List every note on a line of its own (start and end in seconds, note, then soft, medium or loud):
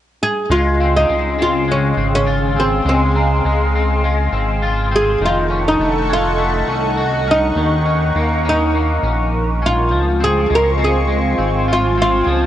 0.22 0.49 G#4 medium
0.49 1.06 C#2 loud
0.49 5.16 C#3 medium
0.49 1.08 G#3 medium
0.49 0.96 F4 medium
0.49 5.16 G#4 medium
0.49 5.16 F5 medium
0.49 5.16 C6 medium
0.80 1.38 C4 medium
0.80 1.60 F5 medium
0.96 1.41 D#4 medium
1.09 1.94 C#2 medium
1.09 1.67 G#3 medium
1.39 1.97 C4 medium
1.39 1.71 F4 medium
1.68 2.85 G#3 medium
1.68 2.14 C#4 medium
1.97 2.81 G#1 medium
1.97 2.56 C4 soft
2.15 2.59 C#4 medium
2.27 4.62 F4 medium
2.56 3.15 C4 medium
2.56 2.88 C4 medium
2.85 3.41 C#2 medium
2.85 3.44 G#3 medium
2.85 3.42 C4 medium
3.15 3.75 C4 medium
3.15 3.96 A#5 medium
3.45 4.29 C#2 medium
3.45 4.03 G#3 medium
3.75 4.32 C4 medium
4.04 5.27 G#3 medium
4.32 5.17 G#1 medium
4.32 4.91 C4 soft
4.63 6.97 F4 medium
4.92 5.49 C4 medium
4.96 5.24 G#4 medium
5.21 5.77 F1 loud
5.21 7.56 D#3 medium
5.21 9.88 D#4 medium
5.21 7.54 A4 medium
5.21 9.88 F#5 medium
5.21 9.88 C#6 medium
5.25 5.68 F4 medium
5.50 6.09 C#4 medium
5.50 6.30 C#6 soft
5.68 6.12 D#4 medium
5.80 6.64 F1 medium
5.80 6.37 A3 medium
6.09 6.68 C#4 medium
6.13 7.31 F4 medium
6.38 7.62 A3 medium
6.68 7.52 C2 medium
6.68 7.27 C#4 medium
6.97 9.94 F#4 medium
7.28 7.85 C#4 medium
7.28 8.48 D#4 medium
7.28 7.82 F6 medium
7.56 8.12 D#2 loud
7.56 9.90 D#3 medium
7.56 9.89 A#4 medium
7.85 8.44 C#4 medium
8.15 8.99 D#2 medium
8.15 8.73 A#3 medium
8.45 9.03 C#4 medium
8.49 9.65 D#4 medium
8.75 9.98 A#3 soft
9.03 9.92 A#1 medium
9.03 9.61 C#4 soft
9.62 10.20 C#4 soft
9.66 10.23 F4 medium
9.91 10.47 C#2 medium
9.91 12.26 F3 medium
9.91 12.46 C4 medium
9.91 12.46 F4 medium
9.91 12.46 G#5 medium
9.91 12.25 C#6 medium
10.20 10.78 C4 medium
10.20 10.53 G#4 medium
10.50 11.35 C#2 medium
10.50 11.07 G#3 medium
10.55 10.83 A#4 medium
10.79 11.37 C4 medium
10.84 11.72 G#4 medium
11.08 12.46 G#3 medium
11.38 12.23 G#1 medium
11.38 11.97 C4 soft
11.68 12.46 F4 medium
11.73 12.01 F4 medium
11.98 12.46 C4 medium
12.02 12.46 F4 medium
12.26 12.46 C#2 loud
12.26 12.46 F3 medium
12.26 12.46 D#6 medium